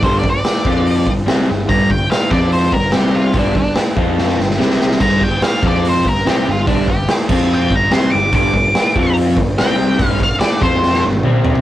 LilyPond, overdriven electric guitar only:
\new Staff \with { instrumentName = "Overdriven electric guitar" } { \clef bass \time 4/4 \key g \minor \tempo 4 = 145 <g, d g>8 <g, d>8 r8 <f c' f'>4 <g, d>8 <c g c'>8 <g, d>8 | <g, d g>8 <g, d>8 r8 <f c' f'>4 <g, d>8 <c g c'>4 | <g, d g>8 <g, d>8 r8 <f c' f'>4 <g, d>8 <c g c'>4 | <g, d g>8 <g, d>8 r8 <f c' f'>4 <g, d>8 <c g c'>8 <g, d>8 |
<g, d g>8 <g, d>8 r8 <f c' f'>4 <g, d>8 <c g c'>8 <g, d>8 | <g, d g>8 <g, d>8 r8 <f c' f'>4 <g, d>8 <c g c'>4 | <g, d g>8 <g, d>8 r8 <f c' f'>4 <g, d>8 <c g c'>4 | }